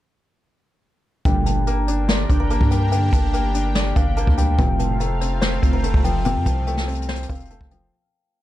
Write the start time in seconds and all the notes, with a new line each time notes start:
1.25 G1 D2 A#2 D3 G3 D4 G4 A#4 G5, kick, closed hi-hat
1.46 A5, closed hi-hat
1.67 A#3 A#5, closed hi-hat
1.88 D4, closed hi-hat
2.09 D5 C6, snare
2.29 G1 D4, kick, closed hi-hat
2.40 A#5
2.50 A#3 A5, closed hi-hat
2.61 G2, kick
2.71 G3 G5, closed hi-hat
2.92 D3 G5, closed hi-hat
3.13 G1 A5, kick, closed hi-hat
3.34 A#3 G5, closed hi-hat
3.54 D4, closed hi-hat
3.75 D5, snare
3.96 G1 D4 F5, kick, closed hi-hat
4.17 A#3 A5, closed hi-hat
4.27 D2, kick
4.38 G3 G5, closed hi-hat
4.58 F1 C2 A2 C3 F3 A3 C4 F4 F5 G5, kick, closed hi-hat
4.79 A5, closed hi-hat
5.00 A3 A#5, closed hi-hat
5.21 C4, closed hi-hat
5.41 C5 C6, snare
5.62 F1 C4, kick, closed hi-hat
5.73 A#5
5.83 A3 A5, closed hi-hat
5.94 F1, kick
6.04 F3 G5, closed hi-hat
6.25 C3 G5, closed hi-hat
6.36 F2
6.46 C2 A5, kick, closed hi-hat
6.67 A3 G5, closed hi-hat
6.77 snare
6.88 C4, closed hi-hat, open hi-hat
6.95 closed hi-hat
7.02 closed hi-hat
7.09 C5, snare
7.16 closed hi-hat
7.23 closed hi-hat
7.29 F1 C4 F5, kick
7.35 closed hi-hat
7.40 closed hi-hat
7.45 closed hi-hat
7.50 A3 A5, closed hi-hat
7.61 F1, kick
7.71 F3 G5, closed hi-hat